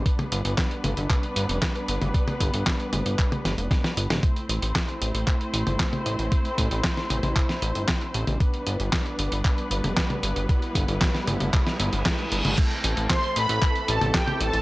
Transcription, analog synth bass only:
X:1
M:4/4
L:1/16
Q:1/4=115
K:Am
V:1 name="Analog synth bass" clef=bass
z2 G,,, G,,, z2 G,,, G,,, z2 G,,, F,,, z2 G,,, G,,, | z2 G,,, G,,, z2 G,,, G,,, z2 G,,, F,,, z2 G,,, G,,, | z2 A,,, A,,, z2 A,,, A,,, z2 A,,, G,,, z2 A,,, A,,, | z2 A,,, A,,, z2 A,,, A,,, z2 A,,, G,,, z2 A,,, A,,, |
z2 G,,, G,,, z2 G,,, G,,, z2 G,,, F,,, z2 G,,, G,,, | z2 G,,, G,,, z2 G,,, G,,, z2 G,,, G,,, z2 G,,, G,,, | z2 A,,, A,,, z2 A,,, A,,, z2 A,,, A,,, z2 A,,, A,,, |]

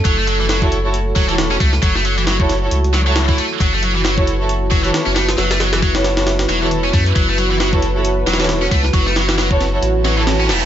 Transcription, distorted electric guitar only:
X:1
M:4/4
L:1/16
Q:"Swing 16ths" 1/4=135
K:F#m
V:1 name="Distorted electric guitar" clef=bass
F, A, F, E, F, z4 z F, E, z C A, z | F, A, F, E, F, z4 z F, F, z E, A, z | F, A, F, E, F, z4 z F, E, z C A, z | F, A, F, E, F, z4 z F, E, z C A, z |
F, A, F, E, F, z4 z F, E, z C A, z | F, A, F, E, F, z4 z F, E, z C A, z |]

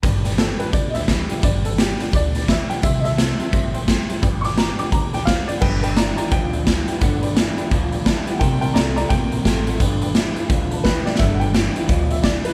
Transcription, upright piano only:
X:1
M:4/4
L:1/8
Q:"Swing" 1/4=172
K:G
V:1 name="Upright piano"
z2 A B d [_e=e]3 | d A G z d2 e g | e [_e=e]4 z3 | z [^c'd'] _b d' b g =f d |
[Bfg] [Bg] [d_b] [db] g4- | g2 z6 | [_Bfg] [Bg] [d_b] [db] g4- | g2 z4 B d |
e [fg]4 e d B |]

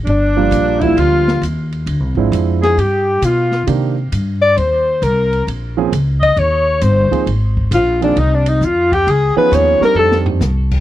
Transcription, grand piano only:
X:1
M:4/4
L:1/8
Q:"Swing" 1/4=133
K:Gphr
V:1 name="Grand piano"
z [F,G,B,DF]2 [F,G,B,DF]3 z2 | z [F,A,CD_F]3 z4 | [E,B,CDG] z6 z | z [F,B,C_DA] z4 z [F,B,CEA] |
z3 [F,B,CEA] z4 | z [F,_C_DEA]2 [G,=C=DEG]3 z2 |]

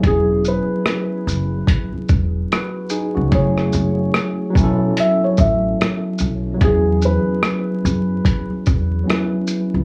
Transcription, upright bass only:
X:1
M:4/4
L:1/16
Q:"Swing 16ths" 1/4=73
K:E
V:1 name="Upright bass" clef=bass
E,,,3 z3 F,,,2 z2 E,,,2 z3 C,, | F,,,2 F,,,2 z2 B,,,2 z2 A,,,2 z2 B,,,2 | E,,3 z3 F,,2 z2 E,,2 z3 C,, |]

